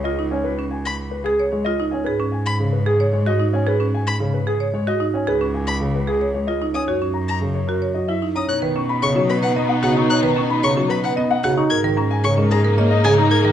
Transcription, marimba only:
0.05 0.23 F4 medium
0.19 0.36 D#4 medium
0.59 0.76 C#4 medium
1.26 1.43 G#4 medium
1.40 1.57 C#5 medium
1.66 1.83 F4 medium
1.80 1.97 D#4 medium
2.06 2.24 G#4 medium
2.20 2.37 C#4 medium
2.86 3.04 G#4 medium
3.00 3.17 C#5 medium
3.26 3.44 F#4 medium
3.40 3.57 D#4 medium
3.67 3.84 G#4 medium
3.80 3.97 C#4 medium
4.47 4.64 G#4 medium
4.60 4.78 C#5 medium
4.87 5.05 F#4 medium
5.00 5.18 D#4 medium
5.27 5.45 G#4 medium
5.41 5.58 C#4 medium
6.07 6.25 G#4 medium
6.21 6.39 C#5 medium
6.48 6.65 F4 medium
6.62 6.79 D#4 medium
6.88 7.05 F#4 medium
7.02 7.19 C#4 medium
7.69 7.86 F#4 medium
7.82 7.99 C#5 medium
8.09 8.26 E4 medium
8.22 8.40 D#4 medium
8.62 8.80 B4 medium
8.76 8.93 C#4 medium
9.02 9.20 C#5 medium
9.16 9.33 C#4 medium
9.43 9.60 B4 medium
9.56 9.73 D#5 medium
9.83 10.00 F#4 medium
9.96 10.14 D#4 medium
10.23 10.40 B4 medium
10.36 10.54 C#4 medium
10.63 10.81 C#5 medium
10.77 10.94 C#4 medium
11.04 11.21 B4 medium
11.17 11.34 D#5 medium
11.44 11.61 F#4 medium
11.58 11.75 D#4 medium
11.84 12.01 A#4 medium
11.97 12.15 C#4 medium
12.24 12.41 C#5 medium
12.38 12.55 C#4 medium
12.65 12.82 A#4 medium
12.78 12.95 D#5 medium
13.05 13.22 G#4 medium
13.18 13.35 D#4 medium
13.45 13.52 A#4 medium

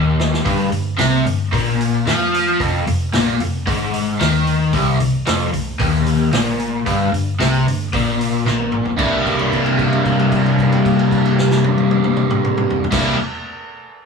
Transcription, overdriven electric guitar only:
0.00 0.45 D#2 loud
0.45 0.71 G2 medium
0.72 0.93 G2 medium
0.98 1.24 C3 loud
1.25 1.47 G2 medium
1.53 2.05 A#2 loud
2.07 2.59 F3 loud
2.60 2.86 F2 medium
2.88 3.08 F2 medium
3.14 3.39 A#2 loud
3.42 3.62 F2 medium
3.67 4.19 G#2 loud
4.20 4.72 D#3 loud
4.73 4.99 C2 loud
5.00 5.21 C2 medium
5.26 5.52 F2 loud
5.53 5.74 C2 medium
5.80 6.32 D#2 loud
6.33 6.85 A#2 loud
6.86 7.11 G2 loud
7.12 7.33 G2 medium
7.40 7.65 C3 loud
7.66 7.87 G2 medium
7.94 8.45 A#2 loud
8.46 8.97 A#2 loud
8.97 12.85 C2 medium
8.97 12.85 G2 medium
8.97 12.86 C3 loud
8.97 12.86 G3 medium
8.97 12.86 A#3 loud
8.97 12.87 E4 loud
12.91 13.15 C2 medium
12.91 13.16 G2 medium
12.91 13.16 C3 medium
12.91 13.17 G3 medium
12.91 13.17 A#3 medium
12.91 13.17 E4 loud

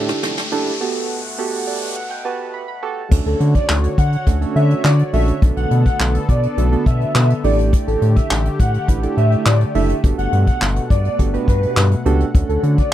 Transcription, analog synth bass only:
0.00 0.13 A2 medium
0.23 0.42 F1 loud
0.52 0.71 F#1 medium
3.12 3.21 D2 loud
3.26 3.35 D2 loud
3.40 3.59 D3 loud
3.69 3.88 D2 loud
3.98 4.17 D3 loud
4.27 4.46 D2 loud
4.56 4.75 D3 loud
4.85 5.03 D3 loud
5.13 5.32 A#1 loud
5.42 5.52 B1 loud
5.57 5.66 B1 loud
5.71 5.90 B2 loud
6.00 6.19 B1 loud
6.29 6.48 B2 loud
6.57 6.76 B1 loud
6.86 7.05 B2 loud
7.15 7.34 B2 loud
7.44 7.72 A1 loud
7.87 7.97 A1 loud
8.02 8.21 A2 loud
8.31 8.49 A1 loud
8.60 8.78 A2 loud
8.88 9.07 A1 loud
9.17 9.36 A2 loud
9.46 9.65 A2 loud
9.75 9.94 F#1 medium
10.04 10.13 G1 loud
10.18 10.28 G1 medium
10.33 10.51 G2 loud
10.61 10.80 G1 loud
10.90 11.09 G2 loud
11.19 11.38 G1 loud
11.48 11.67 G2 loud
11.77 11.96 G2 loud
12.06 12.24 C#2 medium
12.35 12.44 D2 loud
12.49 12.58 D2 medium
12.63 12.82 D3 loud

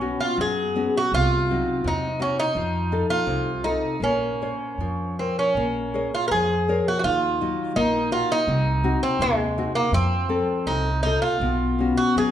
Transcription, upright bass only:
0.00 0.10 B1 medium
0.38 0.86 F#2 medium
1.12 1.58 C2 medium
1.84 2.30 E2 medium
2.55 3.01 F2 medium
3.26 3.74 C2 medium
4.00 4.51 A#1 medium
4.78 5.28 F2 medium
5.55 6.04 A#1 medium
6.31 6.79 F2 medium
7.04 7.50 D#2 medium
7.76 8.22 A#1 medium
8.47 8.94 C2 medium
9.19 9.67 D#2 medium
9.92 10.40 F2 medium
10.66 11.15 C2 medium
11.40 11.90 B1 medium
12.16 12.31 F#2 medium

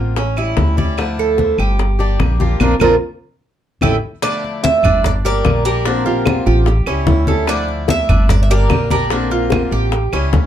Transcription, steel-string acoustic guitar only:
0.00 0.15 D3 soft
0.00 0.16 A#3 soft
0.00 0.16 C4 soft
0.00 0.16 F4 soft
0.17 muted steel-string acoustic guitar stroke medium
0.36 0.57 G3 soft
0.36 0.57 C#4 medium
0.36 0.56 E4 medium
0.57 0.77 E3 soft
0.57 0.77 G3 soft
0.57 0.77 C#4 medium
0.57 0.76 E4 soft
0.77 0.97 G3 medium
0.77 0.97 C#4 medium
0.77 0.97 E4 medium
0.97 1.37 D3 medium
0.97 1.37 F3 medium
0.97 1.37 A3 medium
0.97 1.38 D4 medium
0.97 1.38 E4 medium
1.38 1.78 F3 soft
1.38 1.78 A3 soft
1.38 1.79 D4 soft
1.38 1.79 E4 medium
1.79 muted steel-string acoustic guitar stroke medium
1.99 2.18 G3 soft
1.99 2.19 A#3 medium
1.99 2.19 D4 medium
1.99 2.19 G4 medium
2.19 2.39 G3 soft
2.19 2.39 A#3 soft
2.19 2.39 D4 soft
2.19 2.39 G4 medium
2.40 2.60 G3 soft
2.40 2.59 A#3 medium
2.40 2.59 D4 medium
2.40 2.59 G4 medium
2.60 2.73 A#3 medium
2.60 2.73 C4 medium
2.60 2.73 D4 medium
2.81 2.94 A#3 medium
2.81 2.94 C4 medium
2.81 2.94 D4 medium
3.82 3.95 A3 medium
3.82 3.95 C#4 medium
3.82 3.95 E4 medium
4.22 4.63 D3 medium
4.22 4.62 F3 medium
4.22 4.62 A3 medium
4.22 4.63 D4 medium
4.22 4.63 E4 medium
4.63 5.03 F3 soft
4.63 5.03 A3 medium
4.63 5.04 D4 soft
4.63 5.04 E4 medium
5.05 muted steel-string acoustic guitar stroke medium
5.25 5.43 G3 medium
5.25 5.44 A#3 medium
5.25 5.44 D4 medium
5.25 5.44 G4 medium
5.45 5.64 G3 medium
5.45 5.65 A#3 soft
5.45 5.65 D4 soft
5.45 5.64 G4 medium
5.66 5.86 G3 medium
5.66 5.85 A#3 medium
5.66 5.85 D4 medium
5.66 5.85 G4 medium
5.86 6.25 D3 medium
5.86 6.26 A#3 medium
5.86 6.26 C4 medium
5.86 6.27 F4 medium
6.27 6.66 D3 soft
6.27 6.67 A#3 medium
6.27 6.67 C4 medium
6.27 6.67 F4 medium
6.67 muted steel-string acoustic guitar stroke medium
6.87 7.07 G3 medium
6.87 7.07 C#4 medium
6.87 7.07 E4 medium
7.08 7.27 E3 soft
7.08 7.27 G3 soft
7.08 7.27 C#4 medium
7.08 7.27 E4 medium
7.28 7.48 G3 medium
7.28 7.48 C#4 medium
7.28 7.47 E4 medium
7.48 7.88 D3 medium
7.48 7.87 F3 medium
7.48 7.88 A3 medium
7.48 7.89 D4 medium
7.48 7.89 E4 medium
7.88 8.29 F3 medium
7.88 8.29 A3 soft
7.88 8.29 D4 medium
7.88 8.29 E4 medium
8.30 muted steel-string acoustic guitar stroke medium
8.50 8.70 G3 medium
8.50 8.70 A#3 medium
8.50 8.70 D4 medium
8.50 8.70 G4 medium
8.71 8.90 G3 soft
8.71 8.90 A#3 medium
8.71 8.91 D4 medium
8.71 8.90 G4 medium
8.91 9.11 G3 medium
8.91 9.11 A#3 medium
8.91 9.11 D4 medium
8.91 9.11 G4 medium
9.11 9.51 D3 medium
9.11 9.51 A#3 medium
9.11 9.52 C4 medium
9.11 9.52 F4 medium
9.52 9.92 D3 soft
9.52 9.92 A#3 soft
9.52 9.92 C4 soft
9.52 9.92 F4 medium
9.92 muted steel-string acoustic guitar stroke medium
10.13 10.32 G3 medium
10.13 10.32 C#4 medium
10.13 10.32 E4 medium
10.33 10.46 E3 soft
10.33 10.46 G3 soft
10.33 10.46 C#4 medium
10.33 10.46 E4 medium

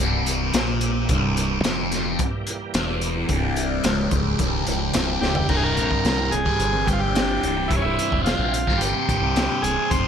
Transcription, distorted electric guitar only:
0.00 0.53 C2 loud
0.54 1.08 A#2 loud
1.10 1.64 C2 loud
1.65 2.19 F2 loud
2.75 3.29 E2 loud
3.30 3.84 C2 loud
3.85 4.11 C#2 medium
4.12 4.39 C#2 medium
4.40 4.67 C2 medium
4.68 4.94 C#2 loud
4.96 5.22 C2 loud
5.22 5.49 C#2 loud
5.49 5.77 C2 medium
5.49 5.77 G2 medium
5.49 5.79 C3 loud
5.77 6.04 C2 medium
5.77 6.05 G2 medium
5.77 6.07 C3 medium
6.05 6.32 C2 medium
6.05 6.21 G2 medium
6.05 6.19 C3 medium
6.19 6.32 G2 medium
6.19 6.33 C3 medium
6.32 muted distorted electric guitar stroke soft
6.46 6.75 G2 medium
6.46 6.72 C3 medium
6.74 6.87 G2 medium
6.74 6.88 C3 medium
6.86 7.13 C2 medium
6.86 7.03 G2 medium
6.86 7.01 C3 medium
7.02 7.15 G2 medium
7.02 7.17 C3 medium
7.14 7.41 C2 medium
7.14 7.43 G2 medium
7.14 7.44 C3 medium
7.42 7.68 C2 medium
7.42 7.58 G2 medium
7.42 7.54 C3 medium
7.55 7.70 G2 medium
7.55 7.72 C3 medium
7.70 7.97 C2 medium
7.70 7.98 G2 medium
7.70 8.00 C3 loud
7.98 8.24 C2 medium
7.98 8.25 G2 medium
7.98 8.27 C3 medium
8.25 8.52 C2 medium
8.25 8.41 G2 medium
8.25 8.37 C3 medium
8.38 8.53 G2 medium
8.38 8.54 C3 medium
8.54 muted distorted electric guitar stroke soft
8.68 8.97 G2 medium
8.68 8.93 C3 medium
8.94 9.08 G2 medium
8.94 9.10 C3 medium
9.08 9.35 C2 medium
9.08 9.25 G2 medium
9.08 9.22 C3 medium
9.23 9.37 G2 medium
9.23 9.38 C3 medium
9.37 9.62 C2 medium
9.37 9.63 G2 medium
9.37 9.65 C3 medium
9.63 9.89 C2 medium
9.63 9.78 G2 medium
9.63 9.75 C3 medium
9.76 9.90 G2 medium
9.76 9.89 C3 medium
9.91 10.08 F2 medium
9.91 10.08 C3 medium
9.91 10.08 F3 loud

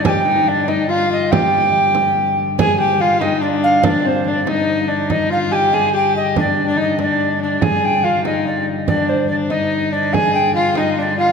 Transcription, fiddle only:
0.05 0.25 G4 medium
0.27 0.49 D#4 medium
0.48 0.69 D4 medium
0.67 0.88 D#4 medium
0.88 1.33 F4 medium
1.31 2.37 G4 medium
2.59 2.78 G#4 medium
2.80 3.03 G4 medium
3.01 3.23 F4 medium
3.21 3.43 D#4 medium
3.41 3.82 D4 medium
3.83 4.06 D4 medium
4.04 4.25 C4 medium
4.26 4.46 D4 medium
4.46 4.90 D#4 medium
4.88 5.12 D4 medium
5.10 5.31 D#4 medium
5.29 5.54 F4 medium
5.52 5.75 G4 medium
5.74 5.93 G#4 medium
5.93 6.38 G4 medium
6.37 6.66 D4 medium
6.66 6.78 D4 medium
6.77 6.98 D#4 medium
6.98 7.38 D4 medium
7.42 7.63 D4 medium
7.61 8.06 G#4 medium
8.04 8.23 F4 medium
8.24 8.63 D#4 medium
8.88 9.27 D4 medium
9.30 9.53 D4 medium
9.51 9.93 D#4 medium
9.92 10.15 D4 medium
10.13 10.54 G#4 medium
10.55 10.79 F4 medium
10.77 11.00 D#4 medium
10.98 11.17 D4 medium
11.18 11.32 F4 medium

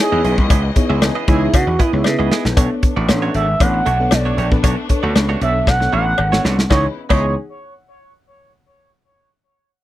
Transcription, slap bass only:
0.12 0.21 E2 medium
0.24 0.35 B1 loud
0.38 0.47 C2 loud
0.50 0.70 C#2 loud
0.90 1.09 C#2 loud
1.28 1.47 C#2 loud
1.54 1.64 C#3 medium
1.67 1.76 E2 medium
1.93 2.02 C#2 medium
2.05 2.16 C#3 loud
2.19 2.28 C#2 medium
2.45 2.54 A#1 medium
2.57 2.67 B1 loud
2.97 3.06 A1 loud
3.09 3.28 A1 medium
3.34 3.54 G#1 loud
3.60 3.80 A1 medium
3.86 4.06 B1 medium
4.12 4.32 B1 medium
4.38 4.57 A#1 medium
4.64 4.74 B1 loud
5.03 5.13 D2 loud
5.15 5.35 C#2 loud
5.41 5.61 B1 loud
5.67 5.87 B1 medium
5.93 6.12 A1 loud
6.19 6.38 G#1 loud
6.44 6.64 C2 medium
6.70 6.86 C#2 loud
7.10 7.34 C#2 loud

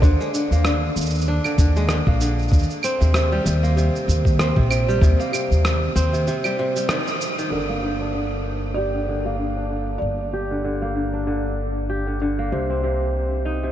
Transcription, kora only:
0.00 0.34 D3 loud
0.00 0.52 A#3 medium
0.00 1.28 D4 medium
0.20 0.38 G#3 medium
0.35 0.64 D3 medium
0.52 2.07 A#3 medium
0.66 1.44 D3 medium
1.28 2.96 D4 loud
1.45 1.58 D3 medium
1.59 1.89 D3 medium
1.77 1.94 G#3 medium
1.90 2.20 D3 medium
2.08 3.63 A#3 medium
2.21 2.57 D3 medium
2.84 4.39 C4 medium
3.01 3.14 C3 medium
3.15 3.45 C3 medium
3.32 4.87 G3 medium
3.46 3.76 C3 medium
3.63 5.19 A#3 medium
3.77 4.56 C3 medium
4.39 5.95 C4 medium
4.57 4.69 C3 medium
4.71 5.01 C3 medium
4.88 6.44 G3 medium
5.02 5.32 C3 medium
5.19 7.12 A#3 medium
5.33 6.12 C3 medium
5.96 7.76 C4 medium
6.13 6.26 C3 medium
6.28 6.58 C3 medium
6.45 6.75 G3 medium
6.59 6.94 C3 medium
6.76 6.94 G3 medium
6.90 7.37 D#3 medium
7.39 7.57 D#3 medium
7.52 7.82 D3 medium
7.69 9.25 A#3 medium
7.83 8.14 D3 medium
8.01 9.56 D4 medium
8.15 8.93 D3 medium
8.77 10.19 G4 medium
8.95 9.07 D3 medium
9.09 9.38 D3 medium
9.26 10.81 A#3 medium
9.39 9.69 D3 medium
9.57 11.13 D4 medium
9.71 10.50 D3 medium
10.33 11.75 G4 medium
10.51 10.63 D3 medium
10.64 10.95 D3 medium
10.82 12.38 A#3 medium
10.96 11.26 D3 medium
11.13 12.81 D4 medium
11.27 12.06 D3 medium
11.90 13.31 G4 medium
12.07 12.20 D3 medium
12.22 12.57 D3 medium
12.39 13.72 A#3 medium
12.52 12.82 C3 medium
12.70 13.72 C4 medium
12.84 13.62 C3 medium
13.45 13.72 D#4 medium
13.63 13.72 C3 medium

